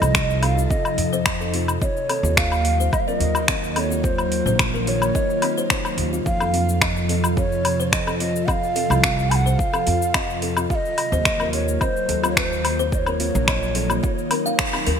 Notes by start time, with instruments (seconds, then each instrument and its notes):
Already playing: ambient pad C3 F3 D#4 A4, ney D#5
0.02 upright bass C2, cabasa, low woodblock
0.15 kalimba D#5, finger snap, kick, cabasa
0.30 cabasa
0.42 kalimba A4, ney F5, open hi-hat, low woodblock
0.57 kalimba F4, cabasa
0.70 kalimba F4, ney D#5, kick, cabasa
0.85 cabasa, low woodblock
0.98 upright bass F2, open hi-hat
1.13 kalimba C5, cabasa
1.26 finger snap, kick, cabasa, low woodblock
1.41 kalimba A4, cabasa
1.54 kalimba F4, open hi-hat
1.68 cabasa, low woodblock
1.81 ambient pad D#3 F#3 A#3 F4, ney C#5, kalimba D#5, kick, cabasa
1.97 cabasa
2.09 kalimba A4, open hi-hat, low woodblock
2.23 upright bass D#2, kalimba F4, cabasa
2.37 ney F5, finger snap, kick, cabasa
2.52 cabasa, low woodblock
2.65 open hi-hat
2.80 kalimba C5, cabasa
2.93 ney D#5, kick, cabasa, low woodblock
3.00 ney F5
3.07 kalimba A#4, ney D#5, cabasa
3.20 upright bass D#2, kalimba F4, open hi-hat
3.35 cabasa, low woodblock
3.48 kalimba D#5, finger snap, kick, cabasa
3.64 cabasa
3.70 ney D#5
3.75 kalimba A4, ney D#5, open hi-hat, low woodblock
3.79 ney C#5
3.90 kalimba F4, cabasa
4.03 kalimba F4, ney C5, kick, cabasa
4.18 cabasa, low woodblock
4.32 open hi-hat
4.46 upright bass A#1, kalimba C5, cabasa
4.59 finger snap, kick, cabasa, low woodblock
4.74 kalimba A#4, cabasa
4.87 kalimba F4, ney C#5, open hi-hat
5.02 cabasa, low woodblock
5.15 kalimba D#5, kick, cabasa
5.30 cabasa
5.42 kalimba D#4, open hi-hat, low woodblock
5.57 kalimba C5, cabasa
5.70 kalimba C5, finger snap, kick, cabasa
5.85 cabasa, low woodblock
5.98 upright bass D#2, open hi-hat
6.13 kalimba F4, cabasa
6.25 upright bass F2, ambient pad C3 F3 A4, ney F5, kick, cabasa
6.40 kalimba A4, cabasa, low woodblock
6.54 kalimba F4, open hi-hat
6.69 cabasa
6.81 kalimba D#5, finger snap, kick, cabasa, low woodblock
6.97 cabasa
7.09 kalimba A4, ney D#5, open hi-hat
7.24 kalimba F4, cabasa, low woodblock
7.37 kalimba F4, ney C#5, kick, cabasa
7.52 cabasa
7.65 open hi-hat, low woodblock
7.80 kalimba C5, cabasa
7.92 ney D#5, finger snap, kick, cabasa
8.07 kalimba A4, cabasa, low woodblock
8.19 kalimba F4, ney D#5, open hi-hat
8.36 cabasa
8.46 kalimba D#5, ney F#5, kick, cabasa, low woodblock
8.51 ney F5
8.64 cabasa
8.76 kalimba A4, open hi-hat
8.90 upright bass C2, kalimba F4, cabasa, low woodblock
9.03 kalimba F4, finger snap, kick, cabasa
9.19 cabasa
9.30 ney A5, open hi-hat, low woodblock
9.35 ney F#5
9.46 kalimba C5, cabasa
9.58 ney F5, kick, cabasa
9.73 kalimba A4, cabasa, low woodblock
9.87 upright bass F2, kalimba F4, open hi-hat
10.02 cabasa
10.14 kalimba D#5, finger snap, kick, cabasa, low woodblock
10.30 cabasa
10.42 kalimba A4, open hi-hat
10.57 kalimba F4, cabasa, low woodblock
10.70 ambient pad D#3 F#3 A#3, kalimba F4, ney F5, kick, cabasa
10.75 ney D#5
10.85 cabasa
10.98 open hi-hat, low woodblock
11.12 upright bass D#2, kalimba C5, cabasa
11.25 finger snap, kick, cabasa
11.40 kalimba A#4, cabasa, low woodblock
11.53 kalimba F4, ney C#5, open hi-hat
11.68 cabasa
11.81 ney C5, kalimba D#5, kick, cabasa, low woodblock
11.97 cabasa
12.09 upright bass D#2, kalimba A4, open hi-hat
12.23 kalimba F4, cabasa, low woodblock
12.30 ney C#5
12.37 ney C5, finger snap, kick, cabasa
12.53 cabasa
12.65 open hi-hat, low woodblock
12.79 kalimba C5, cabasa
12.92 ambient pad D#4, ney D#5, kick, cabasa
12.99 ney C#5
13.06 kalimba A#4, cabasa, low woodblock
13.20 kalimba F4, open hi-hat
13.35 upright bass A#1, cabasa
13.48 kalimba D#5, finger snap, kick, cabasa, low woodblock
13.63 cabasa
13.75 kalimba A4, open hi-hat
13.90 kalimba F4, cabasa, low woodblock
14.03 kalimba F4, kick, cabasa
14.18 cabasa
14.31 kalimba A#4, open hi-hat, low woodblock
14.46 kalimba F5, cabasa
14.59 finger snap, kick, cabasa
14.73 kalimba D#4, cabasa, low woodblock
14.86 upright bass D#2, kalimba A#4, open hi-hat